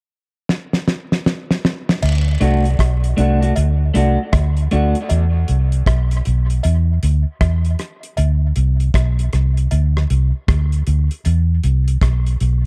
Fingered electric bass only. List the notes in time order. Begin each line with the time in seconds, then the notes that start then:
2.03 D2
2.41 C2
2.80 B1
3.18 C2
3.57 D2
3.96 C2
4.34 D2
4.73 D2
5.11 E2
5.49 C2
5.87 B1
6.27 B1
6.65 E2
7.03 D2
7.41 E2
8.18 D2
8.57 C2
8.95 B1
9.33 C2
9.72 D2
10.11 C2
10.49 D2
10.88 D2
11.26 E2
11.64 C2
12.02 B1
12.41 B1